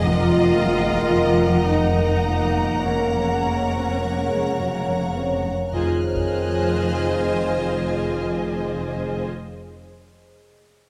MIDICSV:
0, 0, Header, 1, 13, 480
1, 0, Start_track
1, 0, Tempo, 555556
1, 42, Time_signature, 5, 2, 24, 8
1, 1963, Tempo, 577478
1, 4843, Tempo, 552486
1, 9325, End_track
2, 0, Start_track
2, 0, Title_t, "Violin section"
2, 0, Program_c, 0, 48
2, 4831, Note_on_c, 0, 90, 28
2, 4838, Note_on_c, 0, 89, 28
2, 6082, Note_off_c, 0, 90, 0
2, 6082, Note_on_c, 0, 91, 28
2, 6490, Note_off_c, 0, 91, 0
2, 6978, Note_off_c, 0, 89, 0
2, 9325, End_track
3, 0, Start_track
3, 0, Title_t, "Violin section"
3, 0, Program_c, 1, 48
3, 43, Note_on_c, 1, 82, 53
3, 4641, Note_off_c, 1, 82, 0
3, 4847, Note_on_c, 1, 80, 32
3, 4986, Note_off_c, 1, 80, 0
3, 5199, Note_on_c, 1, 80, 36
3, 7913, Note_off_c, 1, 80, 0
3, 9325, End_track
4, 0, Start_track
4, 0, Title_t, "Violin section"
4, 0, Program_c, 2, 48
4, 0, Note_on_c, 2, 75, 65
4, 47, Note_on_c, 2, 78, 49
4, 2412, Note_off_c, 2, 75, 0
4, 2447, Note_on_c, 2, 73, 32
4, 4643, Note_off_c, 2, 73, 0
4, 4643, Note_off_c, 2, 78, 0
4, 4841, Note_on_c, 2, 75, 34
4, 4845, Note_on_c, 2, 72, 30
4, 4983, Note_off_c, 2, 75, 0
4, 4985, Note_off_c, 2, 72, 0
4, 5202, Note_on_c, 2, 72, 38
4, 5204, Note_on_c, 2, 75, 41
4, 7914, Note_off_c, 2, 72, 0
4, 7915, Note_off_c, 2, 75, 0
4, 9325, End_track
5, 0, Start_track
5, 0, Title_t, "Ambient pad"
5, 0, Program_c, 3, 92
5, 0, Note_on_c, 3, 75, 58
5, 48, Note_on_c, 3, 82, 49
5, 51, Note_on_c, 3, 70, 51
5, 2415, Note_off_c, 3, 75, 0
5, 2441, Note_on_c, 3, 73, 45
5, 4838, Note_on_c, 3, 72, 48
5, 4842, Note_off_c, 3, 73, 0
5, 4843, Note_on_c, 3, 68, 44
5, 4844, Note_on_c, 3, 75, 46
5, 4845, Note_off_c, 3, 82, 0
5, 4847, Note_off_c, 3, 70, 0
5, 7912, Note_off_c, 3, 72, 0
5, 7915, Note_off_c, 3, 68, 0
5, 7915, Note_off_c, 3, 75, 0
5, 9325, End_track
6, 0, Start_track
6, 0, Title_t, "Viola section"
6, 0, Program_c, 4, 48
6, 42, Note_on_c, 4, 65, 77
6, 1441, Note_off_c, 4, 65, 0
6, 1471, Note_on_c, 4, 63, 48
6, 2437, Note_on_c, 4, 61, 34
6, 2440, Note_off_c, 4, 63, 0
6, 4362, Note_off_c, 4, 61, 0
6, 4844, Note_on_c, 4, 65, 41
6, 4985, Note_off_c, 4, 65, 0
6, 5206, Note_on_c, 4, 65, 46
6, 7916, Note_off_c, 4, 65, 0
6, 9325, End_track
7, 0, Start_track
7, 0, Title_t, "French horn section"
7, 0, Program_c, 5, 60
7, 53, Note_on_c, 5, 58, 50
7, 59, Note_on_c, 5, 70, 45
7, 2786, Note_off_c, 5, 58, 0
7, 2786, Note_off_c, 5, 70, 0
7, 2927, Note_on_c, 5, 58, 29
7, 3149, Note_off_c, 5, 58, 0
7, 3164, Note_on_c, 5, 60, 24
7, 3399, Note_off_c, 5, 60, 0
7, 3412, Note_on_c, 5, 58, 24
7, 3642, Note_on_c, 5, 56, 24
7, 3647, Note_off_c, 5, 58, 0
7, 3882, Note_off_c, 5, 56, 0
7, 3894, Note_on_c, 5, 54, 24
7, 4129, Note_off_c, 5, 54, 0
7, 4137, Note_on_c, 5, 58, 26
7, 4372, Note_off_c, 5, 58, 0
7, 4375, Note_on_c, 5, 60, 22
7, 4609, Note_on_c, 5, 61, 23
7, 4612, Note_off_c, 5, 60, 0
7, 4844, Note_off_c, 5, 61, 0
7, 4859, Note_on_c, 5, 68, 37
7, 4860, Note_on_c, 5, 60, 34
7, 7923, Note_off_c, 5, 60, 0
7, 7923, Note_off_c, 5, 68, 0
7, 9325, End_track
8, 0, Start_track
8, 0, Title_t, "Trombone section"
8, 0, Program_c, 6, 61
8, 0, Note_on_c, 6, 51, 58
8, 45, Note_on_c, 6, 58, 48
8, 2409, Note_off_c, 6, 51, 0
8, 2444, Note_on_c, 6, 49, 30
8, 4574, Note_off_c, 6, 49, 0
8, 4575, Note_off_c, 6, 58, 0
8, 4833, Note_on_c, 6, 51, 33
8, 4834, Note_on_c, 6, 53, 31
8, 7910, Note_off_c, 6, 51, 0
8, 7910, Note_off_c, 6, 53, 0
8, 9325, End_track
9, 0, Start_track
9, 0, Title_t, "Cello section"
9, 0, Program_c, 7, 48
9, 50, Note_on_c, 7, 41, 57
9, 191, Note_off_c, 7, 41, 0
9, 292, Note_on_c, 7, 41, 40
9, 432, Note_off_c, 7, 41, 0
9, 525, Note_on_c, 7, 41, 38
9, 667, Note_off_c, 7, 41, 0
9, 766, Note_on_c, 7, 53, 30
9, 907, Note_off_c, 7, 53, 0
9, 1008, Note_on_c, 7, 53, 28
9, 1148, Note_off_c, 7, 53, 0
9, 1238, Note_on_c, 7, 41, 39
9, 1382, Note_off_c, 7, 41, 0
9, 1474, Note_on_c, 7, 41, 27
9, 1620, Note_off_c, 7, 41, 0
9, 1720, Note_on_c, 7, 41, 24
9, 1867, Note_off_c, 7, 41, 0
9, 1962, Note_on_c, 7, 53, 23
9, 2105, Note_off_c, 7, 53, 0
9, 2211, Note_on_c, 7, 41, 26
9, 2353, Note_off_c, 7, 41, 0
9, 2442, Note_on_c, 7, 41, 28
9, 2586, Note_off_c, 7, 41, 0
9, 2683, Note_on_c, 7, 41, 21
9, 2827, Note_off_c, 7, 41, 0
9, 2927, Note_on_c, 7, 41, 21
9, 3070, Note_off_c, 7, 41, 0
9, 3174, Note_on_c, 7, 53, 19
9, 3315, Note_off_c, 7, 53, 0
9, 3406, Note_on_c, 7, 53, 18
9, 3549, Note_off_c, 7, 53, 0
9, 3640, Note_on_c, 7, 41, 24
9, 3785, Note_off_c, 7, 41, 0
9, 3887, Note_on_c, 7, 41, 18
9, 4031, Note_off_c, 7, 41, 0
9, 4129, Note_on_c, 7, 41, 17
9, 4273, Note_off_c, 7, 41, 0
9, 4367, Note_on_c, 7, 53, 17
9, 4511, Note_off_c, 7, 53, 0
9, 4607, Note_on_c, 7, 41, 20
9, 4749, Note_off_c, 7, 41, 0
9, 9325, End_track
10, 0, Start_track
10, 0, Title_t, "Cello section"
10, 0, Program_c, 8, 48
10, 0, Note_on_c, 8, 41, 53
10, 2412, Note_off_c, 8, 41, 0
10, 2447, Note_on_c, 8, 41, 29
10, 4643, Note_off_c, 8, 41, 0
10, 4839, Note_on_c, 8, 41, 34
10, 4982, Note_off_c, 8, 41, 0
10, 5203, Note_on_c, 8, 41, 43
10, 7915, Note_off_c, 8, 41, 0
10, 9325, End_track
11, 0, Start_track
11, 0, Title_t, "Timpani"
11, 0, Program_c, 10, 47
11, 4845, Note_on_c, 10, 41, 28
11, 4978, Note_off_c, 10, 41, 0
11, 5209, Note_on_c, 10, 41, 30
11, 8494, Note_off_c, 10, 41, 0
11, 9325, End_track
12, 0, Start_track
12, 0, Title_t, "Double bass section"
12, 0, Program_c, 11, 48
12, 0, Note_on_c, 11, 29, 63
12, 2407, Note_off_c, 11, 29, 0
12, 2438, Note_on_c, 11, 29, 35
12, 4639, Note_off_c, 11, 29, 0
12, 4841, Note_on_c, 11, 29, 34
12, 4983, Note_off_c, 11, 29, 0
12, 5198, Note_on_c, 11, 29, 36
12, 7912, Note_off_c, 11, 29, 0
12, 9325, End_track
13, 0, Start_track
13, 0, Title_t, "Taiko and cinematic ensemble drums"
13, 41, Note_on_c, 9, 41, 43
13, 128, Note_off_c, 9, 41, 0
13, 761, Note_on_c, 9, 41, 29
13, 847, Note_off_c, 9, 41, 0
13, 4840, Note_on_c, 9, 41, 29
13, 4927, Note_off_c, 9, 41, 0
13, 5200, Note_on_c, 9, 41, 31
13, 5287, Note_off_c, 9, 41, 0
13, 9325, End_track
0, 0, End_of_file